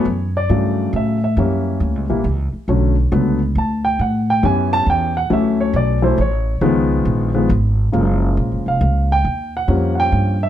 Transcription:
0.00 0.32 C#5 medium
0.05 0.48 F#2 medium
0.37 0.90 D5 medium
0.49 0.92 G2 medium
0.49 1.17 C#3 medium
0.49 1.16 E3 medium
0.49 1.16 F#3 medium
0.49 1.17 A3 medium
0.93 1.35 A2 medium
0.93 1.23 E5 medium
1.24 1.78 E5 medium
1.37 1.79 F#2 medium
1.37 2.04 E3 medium
1.37 2.04 G3 medium
1.37 2.04 A#3 medium
1.37 2.05 C#4 medium
1.80 1.95 D2 medium
1.95 2.10 C#2 soft
2.10 2.24 A#1 medium
2.10 2.23 E3 medium
2.10 2.23 G3 medium
2.10 2.23 A#3 medium
2.10 2.23 E4 medium
2.24 2.51 C#2 medium
2.53 muted upright bass stroke soft
2.68 3.10 B1 medium
2.68 2.95 D3 medium
2.68 2.95 F#3 medium
2.68 2.95 A3 medium
2.68 2.95 C#4 medium
3.12 3.54 C#2 medium
3.12 3.38 D3 medium
3.12 3.38 F#3 medium
3.12 3.38 A3 medium
3.12 3.38 B3 medium
3.55 3.98 D2 medium
3.55 3.85 A5 medium
3.85 3.99 G5 medium
3.99 4.42 A2 medium
3.99 4.28 F#5 medium
4.30 4.44 G5 medium
4.43 4.86 F#2 medium
4.43 5.10 E3 medium
4.43 5.10 B3 medium
4.43 5.10 C#4 medium
4.43 5.10 G4 medium
4.43 4.72 G#5 medium
4.73 4.87 A5 loud
4.86 5.29 E2 medium
4.86 5.17 G5 medium
5.17 5.31 F#5 medium
5.30 5.73 D2 medium
5.30 5.97 E3 medium
5.30 5.97 F#3 medium
5.30 5.97 A3 medium
5.30 5.97 C#4 medium
5.30 5.60 E5 medium
5.60 5.75 C#5 medium
5.73 6.16 B1 medium
5.73 6.03 D5 medium
6.02 6.16 E3 medium
6.02 6.16 F#3 medium
6.02 6.16 A3 medium
6.02 6.16 E4 medium
6.02 6.18 C5 medium
6.18 6.60 A1 medium
6.18 6.60 C#5 medium
6.61 7.04 C#2 medium
6.61 7.29 D#3 medium
6.61 7.29 F3 medium
6.61 7.29 G#3 medium
6.61 7.29 B3 medium
7.05 7.48 A#1 medium
7.34 7.48 D#3 medium
7.34 7.48 F3 medium
7.34 7.48 G#3 medium
7.34 7.48 B3 medium
7.49 7.92 G#1 loud
7.92 8.36 F#1 medium
7.92 9.15 C#3 medium
7.92 9.15 F3 medium
7.92 9.16 G#3 medium
7.92 9.16 A#3 medium
8.37 8.53 A#1 medium
8.52 8.65 F#1 medium
8.66 8.80 F1 medium
8.66 9.08 F5 medium
8.81 9.23 C#2 medium
9.12 9.52 G5 medium
9.25 9.67 D#2 medium
9.57 9.94 F#5 medium
9.68 10.11 F2 medium
9.68 10.35 F3 medium
9.68 10.35 G3 medium
9.68 10.35 A#3 medium
9.68 10.35 C#4 medium
9.95 9.97 F#5 medium
10.00 10.39 G5 medium
10.12 10.49 G2 medium
10.43 10.49 E5 medium

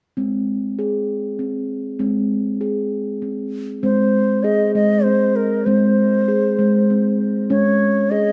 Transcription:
0.17 1.97 G#3 medium
0.17 0.78 C4 medium
0.79 1.40 G#4 medium
1.39 1.98 C4 medium
1.99 3.80 G#3 medium
1.99 2.61 C4 medium
2.61 3.22 G#4 medium
3.22 3.82 C4 medium
3.83 4.71 G#3 medium
3.83 4.45 C4 medium
3.83 4.45 C5 medium
4.43 5.06 G#4 medium
4.43 4.74 D#5 medium
4.75 5.63 G#3 medium
4.75 5.05 D#5 medium
5.04 5.66 C4 medium
5.04 5.37 C5 medium
5.36 5.67 A#4 medium
5.66 6.54 G#3 medium
5.66 6.28 C4 medium
5.66 7.19 C5 medium
6.28 6.89 G#4 medium
6.59 7.46 G#3 medium
6.90 7.51 C4 medium
7.50 8.11 G#3 medium
7.50 8.32 C#4 medium
7.50 8.12 C#5 medium
8.11 8.32 G#4 medium
8.11 8.32 D#5 medium

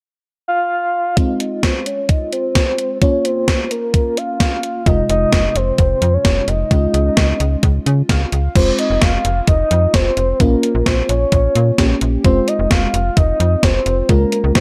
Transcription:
0.48 1.19 F5 loud
1.17 2.98 G#3 medium
1.17 2.98 C4 medium
1.17 2.98 F4 medium
1.17 1.39 D#5 loud
1.17 kick loud
1.17 closed hi-hat medium
1.40 1.64 D#5 medium
1.40 closed hi-hat medium
1.63 1.86 C5 loud
1.63 kick loud
1.63 snare loud
1.63 closed hi-hat medium
1.86 2.11 C#5 medium
1.86 closed hi-hat medium
2.09 2.32 D#5 loud
2.09 kick loud
2.09 closed hi-hat medium
2.33 2.98 C5 loud
2.33 closed hi-hat medium
2.55 kick loud
2.55 snare loud
2.55 closed hi-hat medium
2.78 closed hi-hat medium
3.02 4.83 A#3 medium
3.02 4.83 C#4 medium
3.02 4.83 F4 medium
3.02 3.26 C#5 loud
3.02 kick loud
3.02 closed hi-hat medium
3.25 3.71 C5 medium
3.25 closed hi-hat medium
3.48 kick loud
3.48 snare loud
3.48 closed hi-hat medium
3.71 4.19 A#4 medium
3.71 closed hi-hat medium
3.94 kick loud
3.94 closed hi-hat medium
4.17 4.88 F5 loud
4.17 closed hi-hat medium
4.40 kick loud
4.40 snare loud
4.40 closed hi-hat medium
4.63 closed hi-hat medium
4.86 5.03 F1 loud
4.86 6.67 C3 medium
4.86 6.67 G#3 medium
4.86 6.67 F4 medium
4.86 5.09 D#5 loud
4.86 kick loud
4.86 closed hi-hat medium
5.09 5.26 F1 medium
5.09 5.58 D#5 loud
5.09 closed hi-hat medium
5.33 5.49 F1 loud
5.33 kick loud
5.33 snare loud
5.33 closed hi-hat medium
5.56 5.72 F1 loud
5.56 6.15 C5 medium
5.56 closed hi-hat medium
5.78 5.95 F1 loud
5.78 kick loud
5.78 closed hi-hat medium
6.02 6.18 F2 loud
6.02 closed hi-hat medium
6.14 6.50 C#5 medium
6.25 6.41 F1 loud
6.25 kick loud
6.25 snare loud
6.25 closed hi-hat medium
6.48 6.64 F1 loud
6.48 8.10 D#5 medium
6.48 closed hi-hat medium
6.71 6.87 C#2 loud
6.71 8.52 G#3 medium
6.71 8.52 C#4 medium
6.71 8.52 F4 medium
6.71 kick loud
6.71 closed hi-hat medium
6.94 7.10 C#2 medium
6.94 closed hi-hat medium
7.17 7.33 C#2 loud
7.17 kick loud
7.17 snare loud
7.17 closed hi-hat medium
7.40 7.56 C#2 loud
7.40 closed hi-hat medium
7.63 7.79 C#2 loud
7.63 kick loud
7.63 closed hi-hat medium
7.86 8.03 C#3 loud
7.86 closed hi-hat medium
8.09 8.25 C#2 loud
8.09 8.52 F5 medium
8.09 kick loud
8.09 snare loud
8.09 closed hi-hat medium
8.32 8.49 C#2 medium
8.32 closed hi-hat medium
8.56 8.72 F1 loud
8.56 10.36 G#3 medium
8.56 10.36 C4 medium
8.56 10.36 F4 medium
8.56 8.77 C5 loud
8.56 kick loud
8.56 closed hi-hat medium
8.56 crash medium
8.79 9.04 D#5 loud
8.79 closed hi-hat medium
8.90 8.98 F1 medium
9.02 9.18 F1 loud
9.02 9.47 F5 loud
9.02 kick loud
9.02 snare loud
9.02 closed hi-hat medium
9.25 9.41 F1 loud
9.25 closed hi-hat medium
9.47 9.64 F1 loud
9.47 9.96 D#5 loud
9.47 kick loud
9.47 closed hi-hat medium
9.71 9.87 F2 loud
9.71 closed hi-hat medium
9.94 10.10 F1 loud
9.94 10.42 C5 loud
9.94 kick loud
9.94 snare loud
9.94 closed hi-hat medium
10.17 10.33 F1 medium
10.17 closed hi-hat medium
10.40 10.56 A#1 loud
10.40 11.76 A#3 medium
10.40 11.76 C#4 medium
10.40 11.76 F4 medium
10.40 10.87 A#4 medium
10.40 kick loud
10.40 closed hi-hat medium
10.63 closed hi-hat medium
10.75 10.83 A#1 medium
10.86 11.02 A#1 loud
10.86 11.08 C5 medium
10.86 kick loud
10.86 snare loud
10.86 closed hi-hat medium
11.09 11.26 A#1 loud
11.09 11.98 C#5 medium
11.09 closed hi-hat medium
11.32 11.48 A#1 loud
11.32 kick loud
11.32 closed hi-hat medium
11.55 11.72 A#2 loud
11.55 closed hi-hat medium
11.78 11.95 A#1 loud
11.78 12.25 A#3 medium
11.78 12.25 C#4 medium
11.78 12.25 G4 medium
11.78 kick loud
11.78 snare loud
11.78 closed hi-hat medium
12.01 12.18 A#1 medium
12.01 closed hi-hat medium
12.24 12.41 F1 loud
12.24 14.06 G#3 medium
12.24 14.06 C4 medium
12.24 14.06 F4 medium
12.24 12.49 C5 loud
12.24 kick loud
12.24 closed hi-hat medium
12.48 12.72 D#5 loud
12.48 closed hi-hat medium
12.59 12.67 F1 medium
12.71 12.87 F1 loud
12.71 13.19 F5 loud
12.71 kick loud
12.71 snare loud
12.71 closed hi-hat medium
12.94 13.10 F1 loud
12.94 closed hi-hat medium
13.17 13.33 F1 loud
13.17 13.65 D#5 loud
13.17 kick loud
13.17 closed hi-hat medium
13.40 13.56 F2 loud
13.40 closed hi-hat medium
13.63 13.79 F1 loud
13.63 14.09 C5 loud
13.63 kick loud
13.63 snare loud
13.63 closed hi-hat medium
13.86 14.02 F1 medium
13.86 closed hi-hat medium
14.09 14.25 C#2 loud
14.09 14.60 G#3 medium
14.09 14.60 C#4 medium
14.09 14.60 F4 medium
14.09 14.52 A#4 medium
14.09 kick loud
14.09 closed hi-hat medium
14.32 closed hi-hat medium
14.44 14.52 C#2 loud
14.55 14.60 C#2 loud
14.55 14.60 C5 medium
14.55 kick loud
14.55 snare loud
14.55 closed hi-hat medium

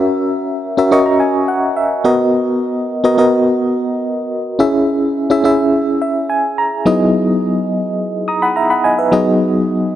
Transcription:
0.00 0.58 C#4 medium
0.00 0.58 F#4 medium
0.00 0.58 A#4 medium
0.00 0.59 E5 medium
0.77 0.88 C#4 medium
0.77 0.88 F#4 medium
0.77 0.89 A#4 medium
0.77 0.89 E5 medium
0.91 1.75 C#4 medium
0.91 1.75 F#4 medium
0.91 1.75 A#4 medium
0.91 1.75 D#5 medium
0.91 1.05 C#6 medium
1.06 1.19 A#5 medium
1.20 1.47 G#5 medium
1.48 1.75 F#5 medium
1.76 2.03 E5 medium
2.04 2.84 B3 medium
2.04 2.84 F#4 medium
2.04 2.85 A#4 medium
2.04 2.85 D#5 medium
3.04 3.15 B3 medium
3.04 3.15 F#4 medium
3.04 3.15 A#4 medium
3.04 3.15 D#5 medium
3.18 4.01 B3 medium
3.18 4.01 F#4 medium
3.18 4.01 A#4 medium
3.18 4.02 D#5 medium
4.59 5.11 C#4 medium
4.59 5.12 E4 medium
4.59 5.12 G#4 medium
4.59 5.12 E5 medium
5.30 5.41 C#4 medium
5.30 5.41 E4 medium
5.30 5.41 G#4 medium
5.30 5.42 E5 loud
5.44 6.27 C#4 medium
5.44 6.28 E4 medium
5.44 6.28 G#4 medium
5.44 6.00 E5 loud
6.02 6.28 E5 medium
6.30 6.56 G#5 medium
6.58 6.85 A#5 medium
6.86 7.69 F#3 medium
6.86 7.69 B3 medium
6.86 7.69 D#4 medium
6.86 7.69 E4 medium
6.86 7.70 G#4 medium
6.86 7.70 D#5 medium
8.28 8.42 A#5 medium
8.28 8.41 D#6 medium
8.42 8.56 F#5 medium
8.42 8.56 B5 medium
8.56 8.70 E5 medium
8.56 8.70 A#5 medium
8.70 8.84 F#5 medium
8.70 8.84 B5 medium
8.84 8.98 D#5 medium
8.84 8.98 G#5 medium
8.98 9.26 B4 medium
8.98 9.25 E5 medium
9.12 9.95 F#3 medium
9.12 9.96 B3 medium
9.12 9.96 D#4 medium
9.12 9.96 F#4 medium
9.12 9.96 G#4 medium
9.12 9.96 D#5 medium

